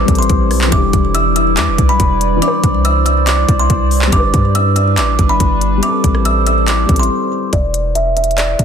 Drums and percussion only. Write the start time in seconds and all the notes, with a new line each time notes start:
0.08 kick, closed hi-hat
0.15 closed hi-hat
0.22 closed hi-hat
0.30 kick, closed hi-hat
0.51 cross-stick, open hi-hat
0.61 clap
0.72 kick, closed hi-hat
0.93 kick, closed hi-hat
1.15 closed hi-hat
1.36 closed hi-hat
1.57 clap, closed hi-hat
1.78 kick, closed hi-hat
2.00 kick, closed hi-hat
2.21 closed hi-hat
2.42 closed hi-hat
2.64 kick, closed hi-hat
2.85 closed hi-hat
3.06 closed hi-hat
3.27 clap, closed hi-hat
3.49 kick, closed hi-hat
3.70 kick, closed hi-hat
3.91 open hi-hat
4.02 clap
4.12 kick, closed hi-hat
4.34 kick, closed hi-hat
4.55 closed hi-hat
4.76 closed hi-hat
4.98 clap, closed hi-hat
5.19 kick, closed hi-hat
5.40 kick, closed hi-hat
5.61 closed hi-hat
5.83 closed hi-hat
6.04 kick, closed hi-hat
6.15 cross-stick
6.25 closed hi-hat
6.47 closed hi-hat
6.68 clap, closed hi-hat
6.89 kick, closed hi-hat
6.96 closed hi-hat
7.03 closed hi-hat
7.53 kick, closed hi-hat
7.74 closed hi-hat
7.95 closed hi-hat
8.17 closed hi-hat
8.24 closed hi-hat
8.31 closed hi-hat
8.38 clap, closed hi-hat
8.59 kick, closed hi-hat